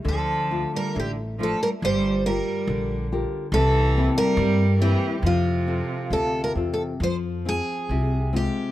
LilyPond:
<<
  \new Staff \with { instrumentName = "Twelve-string acoustic guitar" } { \time 2/4 \key f \major \tempo 4 = 69 a'8. bes'16 g'8 a'16 bes'16 | c''8 bes'4 r8 | a'8. bes'8. g'8 | f'4 \tuplet 3/2 { a'8 bes'8 a'8 } |
\key f \minor c''8 aes'4 g'8 | }
  \new Staff \with { instrumentName = "Nylon-string guitar" } { \time 2/4 \key f \major d8 <a d' f'>8 a8 <a d' f'>8 | g8 <f' g' bes'>8 d8 <f' g' bes'>8 | c8 <bes c' e'>8 g8 <bes c' e'>8 | f8 <c' f' a'>8 c8 <c' f' a'>8 |
\key f \minor f8 <c' f' aes'>8 c8 <aes c' f'>8 | }
  \new Staff \with { instrumentName = "Cello" } { \clef bass \time 2/4 \key f \major f8. g16 d8 f16 g16 | g8 g4 r8 | e8. g8. e8 | c4. r8 |
\key f \minor r2 | }
  \new Staff \with { instrumentName = "Upright bass" } { \clef bass \time 2/4 \key f \major d,4 a,,4 | g,,4 bes,,4 | c,4 g,4 | f,4 d,8 e,8 |
\key f \minor f,4 c,4 | }
>>